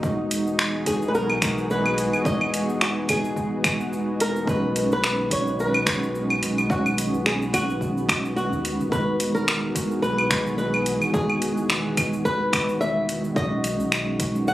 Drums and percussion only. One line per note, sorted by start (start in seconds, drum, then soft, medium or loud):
0.03 kick loud
0.03 cabasa soft
0.31 closed hi-hat medium
0.31 cabasa medium
0.47 cabasa soft
0.59 finger snap medium
0.59 cabasa soft
0.86 kick medium
0.86 closed hi-hat medium
0.86 cabasa medium
1.02 cabasa soft
1.15 cabasa soft
1.30 claves medium
1.42 finger snap medium
1.42 kick loud
1.42 closed hi-hat medium
1.42 cabasa medium
1.58 cabasa soft
1.70 cabasa soft
1.86 claves medium
1.98 closed hi-hat medium
1.98 cabasa medium
2.13 cabasa soft
2.13 claves medium
2.25 kick loud
2.25 cabasa soft
2.41 claves medium
2.54 closed hi-hat medium
2.54 cabasa medium
2.69 cabasa soft
2.81 finger snap medium
2.81 cabasa soft
3.09 kick medium
3.09 closed hi-hat medium
3.09 cabasa medium
3.09 claves medium
3.25 cabasa soft
3.36 kick medium
3.36 cabasa soft
3.64 finger snap medium
3.64 kick loud
3.64 closed hi-hat medium
3.64 cabasa medium
3.64 claves medium
3.81 cabasa soft
3.93 cabasa soft
4.20 closed hi-hat medium
4.20 cabasa medium
4.36 cabasa soft
4.47 kick loud
4.47 cabasa soft
4.76 closed hi-hat medium
4.76 cabasa medium
4.92 cabasa soft
5.04 finger snap medium
5.04 cabasa soft
5.31 kick medium
5.31 closed hi-hat loud
5.31 cabasa medium
5.47 cabasa soft
5.59 cabasa soft
5.74 claves medium
5.86 finger snap medium
5.86 kick loud
5.86 closed hi-hat loud
5.86 cabasa medium
6.03 cabasa soft
6.15 cabasa soft
6.30 claves medium
6.43 closed hi-hat medium
6.43 cabasa medium
6.58 cabasa soft
6.58 claves medium
6.70 kick loud
6.70 cabasa soft
6.86 cabasa soft
6.86 claves medium
6.98 closed hi-hat medium
6.98 cabasa medium
7.14 cabasa soft
7.26 finger snap medium
7.26 cabasa soft
7.42 cabasa soft
7.53 kick medium
7.53 closed hi-hat loud
7.53 cabasa medium
7.53 claves medium
7.70 cabasa soft
7.81 kick medium
7.81 cabasa soft
7.98 cabasa soft
8.09 finger snap medium
8.09 kick loud
8.09 closed hi-hat medium
8.09 cabasa medium
8.09 claves medium
8.25 cabasa soft
8.37 cabasa soft
8.53 cabasa soft
8.65 closed hi-hat medium
8.65 cabasa medium
8.80 cabasa soft
8.92 kick loud
8.92 cabasa soft
9.20 closed hi-hat medium
9.20 cabasa medium
9.36 cabasa soft
9.48 finger snap medium
9.48 cabasa soft
9.75 kick medium
9.75 closed hi-hat medium
9.75 cabasa medium
9.91 cabasa soft
10.03 cabasa soft
10.18 claves medium
10.31 finger snap medium
10.31 kick loud
10.31 closed hi-hat loud
10.31 cabasa medium
10.47 cabasa soft
10.59 cabasa soft
10.74 claves medium
10.86 closed hi-hat medium
10.86 cabasa medium
11.02 cabasa soft
11.02 claves medium
11.14 kick loud
11.14 cabasa soft
11.30 claves medium
11.42 closed hi-hat medium
11.42 cabasa medium
11.57 cabasa soft
11.70 finger snap medium
11.70 cabasa soft
11.97 kick medium
11.97 closed hi-hat medium
11.97 cabasa medium
11.97 claves medium
12.13 cabasa soft
12.25 kick medium
12.25 cabasa soft
12.53 finger snap medium
12.53 kick loud
12.53 closed hi-hat medium
12.53 cabasa medium
12.53 claves medium
12.69 cabasa soft
12.81 cabasa soft
13.09 closed hi-hat medium
13.09 cabasa medium
13.24 cabasa soft
13.36 kick loud
13.36 cabasa soft
13.64 closed hi-hat medium
13.64 cabasa medium
13.80 cabasa soft
13.92 finger snap medium
13.92 cabasa soft
14.20 kick medium
14.20 closed hi-hat medium
14.20 cabasa medium
14.35 cabasa soft
14.48 cabasa soft